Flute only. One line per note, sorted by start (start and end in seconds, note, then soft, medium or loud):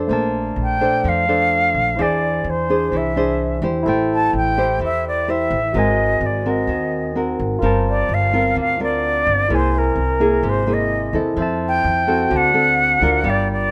0.62 1.10 G5 loud
1.08 2.03 F5 loud
2.02 2.51 D5 medium
2.50 2.98 C5 medium
2.97 3.65 E5 medium
4.14 4.34 A5 medium
4.36 4.79 G5 loud
4.84 5.05 E5 medium
5.08 5.31 D5 medium
5.30 5.78 E5 medium
5.77 6.27 D#5 medium
6.26 6.51 D5 medium
6.50 7.18 D#5 medium
7.89 8.15 D5 medium
8.14 8.59 F5 medium
8.60 8.80 F5 medium
8.83 9.57 D5 loud
9.55 9.79 C5 medium
9.78 10.51 A#4 medium
10.49 10.75 C5 medium
10.73 11.17 D#5 medium
11.68 12.38 G5 loud
12.36 13.31 F#5 loud
13.29 13.51 D5 medium
13.52 13.71 D5 medium